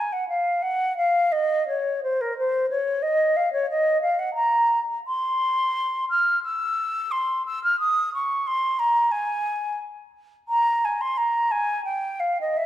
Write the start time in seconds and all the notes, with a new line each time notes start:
Already playing: G#5
0.12 F#5
0.29 F5
0.62 F#5
0.97 F5
1.32 D#5
1.68 C#5
2.03 C5
2.21 A#4
2.38 C5
2.70 C#5
3.02 D#5
3.36 F5
3.52 C#5
3.70 D#5
4.01 F5
4.19 F#5
4.34 A#5
5.07 C6
6.10 F6
6.43 E6
7.11 C6
7.46 E6
7.63 F6
7.79 D#6
8.14 C#6
8.47 C6
8.79 A#5
9.11 G#5
10.48 A#5
10.84 G#5
11.01 C6
11.17 A#5
11.51 G#5
11.84 G5
12.20 F5
12.41 D#5
12.57 E5